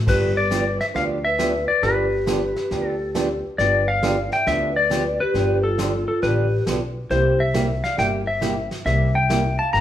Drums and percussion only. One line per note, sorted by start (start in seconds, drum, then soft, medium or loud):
0.07 brush sweep medium
0.07 kick medium
0.07 snare soft
0.07 crash medium
0.51 snare medium
0.51 hi-hat pedal medium
0.81 snare soft
0.95 brush sweep soft
0.95 snare soft
1.39 snare medium
1.39 hi-hat pedal medium
1.83 brush sweep soft
1.83 snare soft
2.27 snare medium
2.27 hi-hat pedal medium
2.56 snare soft
2.71 brush sweep soft
2.71 snare soft
3.15 snare medium
3.15 hi-hat pedal medium
3.59 brush sweep soft
3.59 snare soft
4.03 snare medium
4.03 hi-hat pedal medium
4.32 snare soft
4.47 brush sweep soft
4.47 snare soft
4.91 snare medium
4.91 hi-hat pedal medium
5.35 brush sweep soft
5.35 snare soft
5.79 snare medium
5.79 hi-hat pedal medium
6.23 brush sweep soft
6.23 snare soft
6.67 snare medium
6.67 hi-hat pedal medium
7.11 brush sweep soft
7.11 snare soft
7.54 snare medium
7.54 hi-hat pedal medium
7.84 snare soft
7.98 brush sweep soft
7.98 snare soft
8.42 snare medium
8.42 hi-hat pedal medium
8.71 snare soft
8.86 brush sweep soft
8.86 snare soft
9.30 snare medium
9.30 hi-hat pedal medium
9.74 brush sweep soft
9.74 snare soft